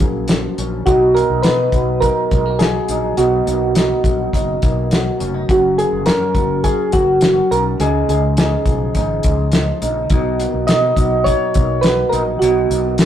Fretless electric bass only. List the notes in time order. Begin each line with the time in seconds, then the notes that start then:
0.00 A#1
0.58 A#1
0.87 B1
1.30 B1
1.45 B2
1.72 B1
2.32 B1
2.89 A#1
3.18 B1
3.47 B1
4.04 A#1
4.33 F#1
4.63 B1
5.21 F1
5.49 F#1
5.93 F#1
6.07 F#2
6.35 F#1
6.94 F#1
7.51 B1
7.80 C#2
8.09 C#2
8.66 B1
8.95 G#1
9.25 C#2
9.82 A#1
10.11 B1
10.54 B1
10.68 B2
10.97 B1
11.56 B1
12.13 A#1
12.42 B1
12.70 B1